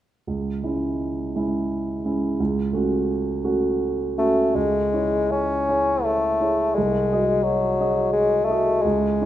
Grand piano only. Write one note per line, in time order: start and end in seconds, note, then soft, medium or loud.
0.27 0.63 C#2 soft
0.63 1.31 G#3 soft
0.63 1.31 C#4 soft
0.63 1.31 E4 soft
1.36 2.01 G#3 soft
1.36 2.01 C#4 soft
1.36 2.02 E4 soft
2.05 2.36 G#3 soft
2.05 2.36 C#4 soft
2.05 2.36 E4 soft
2.40 2.73 C#2 soft
2.73 3.40 A3 soft
2.73 3.40 C#4 soft
2.73 3.40 F#4 soft
3.44 4.14 A3 soft
3.44 4.14 C#4 soft
3.44 4.14 F#4 soft
4.18 4.52 A3 soft
4.18 4.52 C#4 soft
4.18 4.52 F#4 soft
4.54 4.92 C#2 soft
4.93 5.65 E4 soft
4.93 5.65 G#4 soft
4.93 5.65 C#5 soft
5.69 6.36 E4 soft
5.69 6.37 G#4 soft
5.69 6.37 C#5 soft
6.41 6.73 E4 soft
6.41 6.73 G#4 soft
6.41 6.73 C#5 soft
6.78 7.11 C2 soft
7.12 7.76 F#4 soft
7.12 7.76 G#4 soft
7.12 7.77 D#5 soft
7.80 8.45 F#4 soft
7.80 8.45 G#4 soft
7.80 8.45 D#5 soft
8.50 8.81 F#4 soft
8.50 8.82 G#4 soft
8.50 8.82 D#5 soft
8.85 9.20 C#2 soft
9.21 9.26 E4 soft
9.21 9.26 G#4 soft
9.21 9.26 C#5 soft